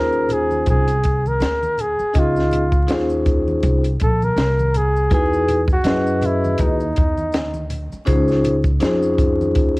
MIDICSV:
0, 0, Header, 1, 6, 480
1, 0, Start_track
1, 0, Key_signature, -5, "major"
1, 0, Tempo, 740741
1, 1392, Time_signature, 4, 2, 24, 8
1, 6349, End_track
2, 0, Start_track
2, 0, Title_t, "Flugelhorn"
2, 0, Program_c, 0, 56
2, 0, Note_on_c, 0, 70, 109
2, 215, Note_on_c, 0, 68, 96
2, 224, Note_off_c, 0, 70, 0
2, 443, Note_off_c, 0, 68, 0
2, 456, Note_on_c, 0, 68, 98
2, 828, Note_on_c, 0, 70, 96
2, 838, Note_off_c, 0, 68, 0
2, 1173, Note_on_c, 0, 68, 92
2, 1183, Note_off_c, 0, 70, 0
2, 1418, Note_on_c, 0, 65, 83
2, 1428, Note_off_c, 0, 68, 0
2, 2125, Note_off_c, 0, 65, 0
2, 2611, Note_on_c, 0, 69, 93
2, 2749, Note_on_c, 0, 70, 100
2, 2759, Note_off_c, 0, 69, 0
2, 3092, Note_on_c, 0, 68, 101
2, 3102, Note_off_c, 0, 70, 0
2, 3322, Note_off_c, 0, 68, 0
2, 3332, Note_on_c, 0, 68, 107
2, 3677, Note_off_c, 0, 68, 0
2, 3710, Note_on_c, 0, 66, 94
2, 4055, Note_on_c, 0, 64, 94
2, 4065, Note_off_c, 0, 66, 0
2, 4289, Note_on_c, 0, 63, 84
2, 4299, Note_off_c, 0, 64, 0
2, 5000, Note_off_c, 0, 63, 0
2, 6349, End_track
3, 0, Start_track
3, 0, Title_t, "Vibraphone"
3, 0, Program_c, 1, 11
3, 0, Note_on_c, 1, 61, 64
3, 0, Note_on_c, 1, 63, 62
3, 0, Note_on_c, 1, 65, 60
3, 0, Note_on_c, 1, 68, 64
3, 0, Note_on_c, 1, 72, 77
3, 547, Note_off_c, 1, 61, 0
3, 547, Note_off_c, 1, 63, 0
3, 548, Note_off_c, 1, 65, 0
3, 549, Note_off_c, 1, 68, 0
3, 551, Note_off_c, 1, 72, 0
3, 1380, Note_on_c, 1, 61, 65
3, 1382, Note_on_c, 1, 63, 63
3, 1384, Note_on_c, 1, 68, 66
3, 1386, Note_on_c, 1, 65, 62
3, 1386, Note_on_c, 1, 75, 82
3, 1686, Note_off_c, 1, 61, 0
3, 1687, Note_off_c, 1, 63, 0
3, 1688, Note_off_c, 1, 68, 0
3, 1689, Note_off_c, 1, 65, 0
3, 1689, Note_off_c, 1, 75, 0
3, 1858, Note_on_c, 1, 63, 57
3, 1859, Note_on_c, 1, 61, 65
3, 1861, Note_on_c, 1, 65, 62
3, 1862, Note_on_c, 1, 68, 62
3, 1867, Note_on_c, 1, 72, 70
3, 2465, Note_off_c, 1, 61, 0
3, 2465, Note_off_c, 1, 63, 0
3, 2467, Note_off_c, 1, 65, 0
3, 2467, Note_off_c, 1, 68, 0
3, 2469, Note_off_c, 1, 72, 0
3, 3305, Note_on_c, 1, 63, 71
3, 3307, Note_on_c, 1, 64, 64
3, 3308, Note_on_c, 1, 68, 64
3, 3309, Note_on_c, 1, 66, 64
3, 3311, Note_on_c, 1, 71, 79
3, 3608, Note_off_c, 1, 63, 0
3, 3609, Note_off_c, 1, 64, 0
3, 3610, Note_off_c, 1, 68, 0
3, 3611, Note_off_c, 1, 66, 0
3, 3611, Note_off_c, 1, 71, 0
3, 3780, Note_on_c, 1, 75, 75
3, 3781, Note_on_c, 1, 64, 62
3, 3784, Note_on_c, 1, 66, 63
3, 3788, Note_on_c, 1, 71, 74
3, 3789, Note_on_c, 1, 68, 59
3, 4386, Note_off_c, 1, 75, 0
3, 4387, Note_off_c, 1, 64, 0
3, 4388, Note_off_c, 1, 66, 0
3, 4390, Note_off_c, 1, 68, 0
3, 4390, Note_off_c, 1, 71, 0
3, 5218, Note_on_c, 1, 61, 89
3, 5223, Note_on_c, 1, 63, 78
3, 5223, Note_on_c, 1, 65, 79
3, 5223, Note_on_c, 1, 68, 74
3, 5224, Note_on_c, 1, 72, 91
3, 5525, Note_off_c, 1, 61, 0
3, 5527, Note_off_c, 1, 63, 0
3, 5527, Note_off_c, 1, 68, 0
3, 5528, Note_off_c, 1, 65, 0
3, 5528, Note_off_c, 1, 72, 0
3, 5702, Note_on_c, 1, 61, 90
3, 5703, Note_on_c, 1, 63, 73
3, 5706, Note_on_c, 1, 65, 75
3, 5707, Note_on_c, 1, 72, 89
3, 5709, Note_on_c, 1, 68, 77
3, 6307, Note_off_c, 1, 61, 0
3, 6308, Note_off_c, 1, 63, 0
3, 6309, Note_off_c, 1, 65, 0
3, 6310, Note_off_c, 1, 68, 0
3, 6310, Note_off_c, 1, 72, 0
3, 6349, End_track
4, 0, Start_track
4, 0, Title_t, "Upright bass"
4, 0, Program_c, 2, 32
4, 0, Note_on_c, 2, 39, 85
4, 433, Note_on_c, 2, 36, 82
4, 442, Note_off_c, 2, 39, 0
4, 888, Note_off_c, 2, 36, 0
4, 910, Note_on_c, 2, 38, 85
4, 1272, Note_off_c, 2, 38, 0
4, 1392, Note_on_c, 2, 37, 94
4, 1848, Note_off_c, 2, 37, 0
4, 1874, Note_on_c, 2, 39, 81
4, 2329, Note_off_c, 2, 39, 0
4, 2354, Note_on_c, 2, 36, 95
4, 2581, Note_off_c, 2, 36, 0
4, 2601, Note_on_c, 2, 34, 87
4, 2825, Note_off_c, 2, 34, 0
4, 2827, Note_on_c, 2, 36, 88
4, 3285, Note_off_c, 2, 36, 0
4, 3312, Note_on_c, 2, 40, 98
4, 3768, Note_off_c, 2, 40, 0
4, 3788, Note_on_c, 2, 42, 90
4, 4246, Note_off_c, 2, 42, 0
4, 4273, Note_on_c, 2, 39, 98
4, 4500, Note_off_c, 2, 39, 0
4, 4519, Note_on_c, 2, 40, 94
4, 4751, Note_off_c, 2, 40, 0
4, 4751, Note_on_c, 2, 38, 90
4, 5113, Note_off_c, 2, 38, 0
4, 5230, Note_on_c, 2, 37, 100
4, 5687, Note_off_c, 2, 37, 0
4, 5715, Note_on_c, 2, 41, 80
4, 6193, Note_off_c, 2, 41, 0
4, 6193, Note_on_c, 2, 39, 99
4, 6349, Note_off_c, 2, 39, 0
4, 6349, End_track
5, 0, Start_track
5, 0, Title_t, "Muted upright bass strokes"
5, 1292, Note_on_c, 9, 29, 46
5, 1357, Note_off_c, 9, 29, 0
5, 5135, Note_on_c, 9, 29, 47
5, 5200, Note_off_c, 9, 29, 0
5, 6349, End_track
6, 0, Start_track
6, 0, Title_t, "Drums"
6, 81, Note_on_c, 9, 82, 50
6, 146, Note_off_c, 9, 82, 0
6, 188, Note_on_c, 9, 63, 45
6, 188, Note_on_c, 9, 64, 65
6, 188, Note_on_c, 9, 82, 43
6, 196, Note_on_c, 9, 42, 65
6, 253, Note_off_c, 9, 63, 0
6, 253, Note_off_c, 9, 64, 0
6, 253, Note_off_c, 9, 82, 0
6, 260, Note_off_c, 9, 42, 0
6, 330, Note_on_c, 9, 63, 58
6, 330, Note_on_c, 9, 82, 43
6, 395, Note_off_c, 9, 63, 0
6, 395, Note_off_c, 9, 82, 0
6, 430, Note_on_c, 9, 42, 73
6, 431, Note_on_c, 9, 82, 58
6, 434, Note_on_c, 9, 36, 91
6, 494, Note_off_c, 9, 42, 0
6, 496, Note_off_c, 9, 82, 0
6, 499, Note_off_c, 9, 36, 0
6, 569, Note_on_c, 9, 42, 46
6, 571, Note_on_c, 9, 82, 42
6, 634, Note_off_c, 9, 42, 0
6, 635, Note_off_c, 9, 82, 0
6, 671, Note_on_c, 9, 42, 68
6, 675, Note_on_c, 9, 82, 43
6, 681, Note_on_c, 9, 36, 80
6, 736, Note_off_c, 9, 42, 0
6, 740, Note_off_c, 9, 82, 0
6, 746, Note_off_c, 9, 36, 0
6, 816, Note_on_c, 9, 63, 58
6, 816, Note_on_c, 9, 82, 43
6, 881, Note_off_c, 9, 63, 0
6, 881, Note_off_c, 9, 82, 0
6, 908, Note_on_c, 9, 82, 60
6, 919, Note_on_c, 9, 42, 96
6, 922, Note_on_c, 9, 38, 117
6, 973, Note_off_c, 9, 82, 0
6, 984, Note_off_c, 9, 42, 0
6, 986, Note_off_c, 9, 38, 0
6, 1054, Note_on_c, 9, 63, 61
6, 1054, Note_on_c, 9, 82, 46
6, 1119, Note_off_c, 9, 63, 0
6, 1119, Note_off_c, 9, 82, 0
6, 1151, Note_on_c, 9, 64, 55
6, 1151, Note_on_c, 9, 82, 37
6, 1158, Note_on_c, 9, 42, 65
6, 1216, Note_off_c, 9, 64, 0
6, 1216, Note_off_c, 9, 82, 0
6, 1223, Note_off_c, 9, 42, 0
6, 1291, Note_on_c, 9, 82, 39
6, 1355, Note_off_c, 9, 82, 0
6, 1388, Note_on_c, 9, 82, 62
6, 1393, Note_on_c, 9, 36, 111
6, 1394, Note_on_c, 9, 42, 94
6, 1453, Note_off_c, 9, 82, 0
6, 1458, Note_off_c, 9, 36, 0
6, 1459, Note_off_c, 9, 42, 0
6, 1530, Note_on_c, 9, 82, 42
6, 1546, Note_on_c, 9, 38, 33
6, 1595, Note_off_c, 9, 82, 0
6, 1611, Note_off_c, 9, 38, 0
6, 1628, Note_on_c, 9, 64, 66
6, 1628, Note_on_c, 9, 82, 46
6, 1637, Note_on_c, 9, 42, 74
6, 1693, Note_off_c, 9, 64, 0
6, 1693, Note_off_c, 9, 82, 0
6, 1702, Note_off_c, 9, 42, 0
6, 1762, Note_on_c, 9, 36, 93
6, 1762, Note_on_c, 9, 82, 49
6, 1826, Note_off_c, 9, 36, 0
6, 1827, Note_off_c, 9, 82, 0
6, 1866, Note_on_c, 9, 42, 83
6, 1868, Note_on_c, 9, 82, 62
6, 1882, Note_on_c, 9, 38, 115
6, 1931, Note_off_c, 9, 42, 0
6, 1933, Note_off_c, 9, 82, 0
6, 1947, Note_off_c, 9, 38, 0
6, 2005, Note_on_c, 9, 82, 51
6, 2070, Note_off_c, 9, 82, 0
6, 2110, Note_on_c, 9, 63, 45
6, 2110, Note_on_c, 9, 64, 67
6, 2110, Note_on_c, 9, 82, 46
6, 2112, Note_on_c, 9, 36, 100
6, 2115, Note_on_c, 9, 42, 65
6, 2175, Note_off_c, 9, 63, 0
6, 2175, Note_off_c, 9, 64, 0
6, 2175, Note_off_c, 9, 82, 0
6, 2177, Note_off_c, 9, 36, 0
6, 2180, Note_off_c, 9, 42, 0
6, 2253, Note_on_c, 9, 63, 60
6, 2253, Note_on_c, 9, 82, 44
6, 2318, Note_off_c, 9, 63, 0
6, 2318, Note_off_c, 9, 82, 0
6, 2351, Note_on_c, 9, 42, 75
6, 2352, Note_on_c, 9, 82, 60
6, 2353, Note_on_c, 9, 36, 98
6, 2416, Note_off_c, 9, 42, 0
6, 2416, Note_off_c, 9, 82, 0
6, 2418, Note_off_c, 9, 36, 0
6, 2488, Note_on_c, 9, 82, 44
6, 2490, Note_on_c, 9, 42, 45
6, 2553, Note_off_c, 9, 82, 0
6, 2555, Note_off_c, 9, 42, 0
6, 2590, Note_on_c, 9, 42, 75
6, 2593, Note_on_c, 9, 82, 44
6, 2601, Note_on_c, 9, 36, 78
6, 2655, Note_off_c, 9, 42, 0
6, 2658, Note_off_c, 9, 82, 0
6, 2666, Note_off_c, 9, 36, 0
6, 2735, Note_on_c, 9, 63, 60
6, 2735, Note_on_c, 9, 82, 46
6, 2799, Note_off_c, 9, 63, 0
6, 2799, Note_off_c, 9, 82, 0
6, 2830, Note_on_c, 9, 82, 59
6, 2835, Note_on_c, 9, 42, 98
6, 2838, Note_on_c, 9, 38, 116
6, 2895, Note_off_c, 9, 82, 0
6, 2900, Note_off_c, 9, 42, 0
6, 2902, Note_off_c, 9, 38, 0
6, 2975, Note_on_c, 9, 63, 67
6, 2975, Note_on_c, 9, 82, 48
6, 3040, Note_off_c, 9, 63, 0
6, 3040, Note_off_c, 9, 82, 0
6, 3073, Note_on_c, 9, 42, 64
6, 3075, Note_on_c, 9, 64, 60
6, 3075, Note_on_c, 9, 82, 40
6, 3138, Note_off_c, 9, 42, 0
6, 3140, Note_off_c, 9, 64, 0
6, 3140, Note_off_c, 9, 82, 0
6, 3216, Note_on_c, 9, 82, 40
6, 3281, Note_off_c, 9, 82, 0
6, 3311, Note_on_c, 9, 42, 90
6, 3312, Note_on_c, 9, 36, 105
6, 3313, Note_on_c, 9, 82, 63
6, 3376, Note_off_c, 9, 42, 0
6, 3377, Note_off_c, 9, 36, 0
6, 3377, Note_off_c, 9, 82, 0
6, 3455, Note_on_c, 9, 82, 48
6, 3519, Note_off_c, 9, 82, 0
6, 3552, Note_on_c, 9, 64, 67
6, 3552, Note_on_c, 9, 82, 46
6, 3555, Note_on_c, 9, 42, 80
6, 3617, Note_off_c, 9, 64, 0
6, 3617, Note_off_c, 9, 82, 0
6, 3619, Note_off_c, 9, 42, 0
6, 3679, Note_on_c, 9, 36, 98
6, 3688, Note_on_c, 9, 82, 48
6, 3744, Note_off_c, 9, 36, 0
6, 3753, Note_off_c, 9, 82, 0
6, 3785, Note_on_c, 9, 42, 87
6, 3786, Note_on_c, 9, 82, 61
6, 3801, Note_on_c, 9, 38, 117
6, 3850, Note_off_c, 9, 42, 0
6, 3851, Note_off_c, 9, 82, 0
6, 3866, Note_off_c, 9, 38, 0
6, 3931, Note_on_c, 9, 82, 51
6, 3996, Note_off_c, 9, 82, 0
6, 4027, Note_on_c, 9, 63, 45
6, 4027, Note_on_c, 9, 64, 66
6, 4027, Note_on_c, 9, 82, 45
6, 4034, Note_on_c, 9, 42, 61
6, 4091, Note_off_c, 9, 63, 0
6, 4091, Note_off_c, 9, 64, 0
6, 4091, Note_off_c, 9, 82, 0
6, 4098, Note_off_c, 9, 42, 0
6, 4174, Note_on_c, 9, 63, 61
6, 4174, Note_on_c, 9, 82, 42
6, 4239, Note_off_c, 9, 63, 0
6, 4239, Note_off_c, 9, 82, 0
6, 4262, Note_on_c, 9, 42, 78
6, 4266, Note_on_c, 9, 82, 65
6, 4271, Note_on_c, 9, 36, 96
6, 4327, Note_off_c, 9, 42, 0
6, 4331, Note_off_c, 9, 82, 0
6, 4336, Note_off_c, 9, 36, 0
6, 4407, Note_on_c, 9, 82, 48
6, 4471, Note_off_c, 9, 82, 0
6, 4509, Note_on_c, 9, 82, 45
6, 4511, Note_on_c, 9, 42, 73
6, 4520, Note_on_c, 9, 36, 81
6, 4574, Note_off_c, 9, 82, 0
6, 4576, Note_off_c, 9, 42, 0
6, 4585, Note_off_c, 9, 36, 0
6, 4649, Note_on_c, 9, 63, 61
6, 4649, Note_on_c, 9, 82, 44
6, 4714, Note_off_c, 9, 63, 0
6, 4714, Note_off_c, 9, 82, 0
6, 4745, Note_on_c, 9, 82, 57
6, 4756, Note_on_c, 9, 42, 101
6, 4759, Note_on_c, 9, 38, 113
6, 4810, Note_off_c, 9, 82, 0
6, 4821, Note_off_c, 9, 42, 0
6, 4823, Note_off_c, 9, 38, 0
6, 4884, Note_on_c, 9, 63, 65
6, 4884, Note_on_c, 9, 82, 47
6, 4949, Note_off_c, 9, 63, 0
6, 4949, Note_off_c, 9, 82, 0
6, 4990, Note_on_c, 9, 42, 61
6, 4990, Note_on_c, 9, 64, 57
6, 4990, Note_on_c, 9, 82, 42
6, 5055, Note_off_c, 9, 42, 0
6, 5055, Note_off_c, 9, 64, 0
6, 5055, Note_off_c, 9, 82, 0
6, 5134, Note_on_c, 9, 82, 42
6, 5199, Note_off_c, 9, 82, 0
6, 5226, Note_on_c, 9, 82, 66
6, 5229, Note_on_c, 9, 42, 98
6, 5231, Note_on_c, 9, 36, 98
6, 5291, Note_off_c, 9, 82, 0
6, 5294, Note_off_c, 9, 42, 0
6, 5296, Note_off_c, 9, 36, 0
6, 5365, Note_on_c, 9, 82, 47
6, 5382, Note_on_c, 9, 38, 33
6, 5430, Note_off_c, 9, 82, 0
6, 5447, Note_off_c, 9, 38, 0
6, 5471, Note_on_c, 9, 64, 67
6, 5471, Note_on_c, 9, 82, 45
6, 5473, Note_on_c, 9, 42, 80
6, 5535, Note_off_c, 9, 64, 0
6, 5535, Note_off_c, 9, 82, 0
6, 5538, Note_off_c, 9, 42, 0
6, 5600, Note_on_c, 9, 36, 98
6, 5606, Note_on_c, 9, 82, 48
6, 5664, Note_off_c, 9, 36, 0
6, 5671, Note_off_c, 9, 82, 0
6, 5705, Note_on_c, 9, 42, 91
6, 5710, Note_on_c, 9, 82, 64
6, 5721, Note_on_c, 9, 38, 113
6, 5770, Note_off_c, 9, 42, 0
6, 5775, Note_off_c, 9, 82, 0
6, 5785, Note_off_c, 9, 38, 0
6, 5849, Note_on_c, 9, 82, 57
6, 5914, Note_off_c, 9, 82, 0
6, 5952, Note_on_c, 9, 36, 99
6, 5952, Note_on_c, 9, 63, 48
6, 5952, Note_on_c, 9, 64, 65
6, 5952, Note_on_c, 9, 82, 43
6, 5955, Note_on_c, 9, 42, 68
6, 6016, Note_off_c, 9, 36, 0
6, 6017, Note_off_c, 9, 63, 0
6, 6017, Note_off_c, 9, 64, 0
6, 6017, Note_off_c, 9, 82, 0
6, 6020, Note_off_c, 9, 42, 0
6, 6098, Note_on_c, 9, 63, 60
6, 6098, Note_on_c, 9, 82, 45
6, 6163, Note_off_c, 9, 63, 0
6, 6163, Note_off_c, 9, 82, 0
6, 6189, Note_on_c, 9, 42, 75
6, 6193, Note_on_c, 9, 36, 97
6, 6195, Note_on_c, 9, 63, 49
6, 6195, Note_on_c, 9, 82, 67
6, 6254, Note_off_c, 9, 42, 0
6, 6258, Note_off_c, 9, 36, 0
6, 6259, Note_off_c, 9, 63, 0
6, 6259, Note_off_c, 9, 82, 0
6, 6329, Note_on_c, 9, 42, 44
6, 6349, Note_off_c, 9, 42, 0
6, 6349, End_track
0, 0, End_of_file